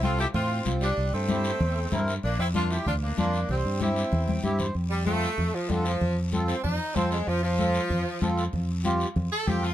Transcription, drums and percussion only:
0.03 high conga medium
0.03 short guiro medium
0.19 short guiro medium
0.34 high conga soft
0.34 low conga medium
0.34 long guiro medium
0.65 high conga medium
0.65 short guiro medium
0.81 short guiro medium
0.97 high conga soft
0.97 long guiro medium
1.29 high conga medium
1.29 short guiro medium
1.44 short guiro medium
1.60 high conga soft
1.60 low conga medium
1.60 long guiro medium
1.92 high conga medium
1.92 low conga medium
1.92 short guiro medium
2.08 short guiro medium
2.23 high conga soft
2.23 long guiro medium
2.55 high conga medium
2.55 short guiro medium
2.70 short guiro medium
2.86 high conga soft
2.86 low conga medium
2.86 long guiro medium
3.17 high conga medium
3.17 short guiro medium
3.33 short guiro medium
3.49 high conga soft
3.49 low conga medium
3.49 long guiro medium
3.80 high conga medium
3.80 short guiro medium
3.96 short guiro medium
4.12 high conga soft
4.12 low conga medium
4.12 long guiro medium
4.28 high conga medium
4.43 high conga medium
4.43 short guiro medium
4.59 low conga medium
4.59 short guiro medium
4.75 high conga soft
4.75 long guiro medium
5.06 high conga medium
5.06 short guiro medium
5.22 short guiro medium
5.38 high conga soft
5.38 low conga medium
5.38 long guiro medium
5.70 high conga medium
5.70 short guiro medium
5.85 short guiro medium
6.01 high conga soft
6.01 low conga medium
6.01 long guiro medium
6.32 high conga medium
6.32 short guiro medium
6.48 short guiro medium
6.64 high conga soft
6.64 low conga medium
6.64 long guiro medium
6.96 high conga medium
6.96 short guiro medium
7.11 short guiro medium
7.27 high conga soft
7.27 long guiro medium
7.59 high conga medium
7.59 short guiro medium
7.74 short guiro medium
7.90 high conga soft
7.90 low conga medium
7.90 long guiro medium
8.21 high conga medium
8.21 short guiro medium
8.38 short guiro medium
8.53 high conga soft
8.53 low conga medium
8.53 long guiro medium
8.85 high conga medium
8.85 short guiro medium
9.00 short guiro medium
9.16 high conga soft
9.16 low conga medium
9.16 long guiro medium
9.47 high conga medium
9.47 low conga medium
9.47 short guiro medium
9.63 short guiro medium

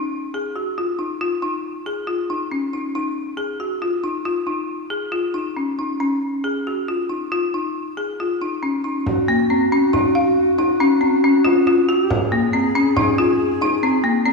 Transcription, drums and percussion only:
9.06 frame drum medium
9.51 frame drum soft
9.94 frame drum medium
10.58 frame drum soft
11.02 frame drum soft
11.45 frame drum medium
11.66 frame drum soft
12.10 frame drum medium
12.53 frame drum soft
12.96 frame drum medium
13.61 frame drum medium
14.05 frame drum soft

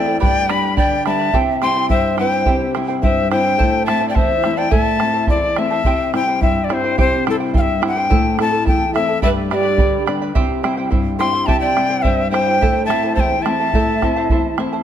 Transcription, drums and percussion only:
0.23 bombo low medium
0.49 bombo rim medium
0.77 bombo low medium
1.06 bombo rim medium
1.33 bombo low medium
1.62 bombo rim soft
1.90 bombo low medium
2.18 bombo rim soft
2.46 bombo low medium
2.75 bombo rim soft
3.03 bombo low medium
3.32 bombo rim medium
3.60 bombo low medium
3.88 bombo rim medium
4.16 bombo low medium
4.44 bombo rim medium
4.72 bombo low medium
5.00 bombo rim medium
5.27 bombo low medium
5.56 bombo rim medium
5.84 bombo low medium
6.14 bombo rim medium
6.42 bombo low medium
6.70 bombo rim medium
6.98 bombo low medium
7.27 bombo rim medium
7.54 bombo low medium
7.83 bombo rim medium
8.11 bombo low medium
8.39 bombo rim medium
8.67 bombo low medium
8.96 bombo rim medium
9.22 bombo low medium
9.51 bombo rim medium
9.78 bombo low medium
10.07 bombo rim medium
10.35 bombo low medium
10.64 bombo rim medium
10.92 bombo low medium
11.21 bombo rim medium
11.48 bombo low medium
11.77 bombo rim soft
12.04 bombo low medium
12.34 bombo rim medium
12.62 bombo low medium
12.90 bombo rim soft
13.17 bombo low medium
13.46 bombo rim medium
13.74 bombo low medium
14.02 bombo rim medium
14.02 bombo low medium
14.30 bombo low medium
14.58 bombo rim medium

